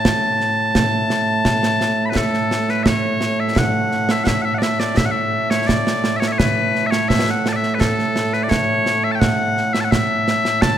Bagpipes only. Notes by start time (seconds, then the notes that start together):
Already playing: A2 A3 A5
2.06 B5
2.10 B4
2.17 A4
2.70 B4
2.83 C#5 E5
3.40 E5
3.58 F#5
4.11 E5
4.24 E5 F#5
4.42 E5 F#5
4.54 F#5
4.58 D5
4.63 E5
4.80 D5
4.97 E5
5.05 F#5
5.11 E5
5.50 C#5
5.67 D5
6.16 C#5 E5
6.28 E5
6.32 C#5
6.38 B4
6.87 E5
6.91 C#5
7.08 E5
7.30 F#5
7.49 D5 A5
7.56 E5
7.75 B4
7.80 A4
8.33 B4
8.43 D5
8.49 C#5
9.04 E5
9.12 G5 A5
9.20 F#5
9.73 E5
9.81 A5
9.85 F#5
9.91 E5
10.62 A5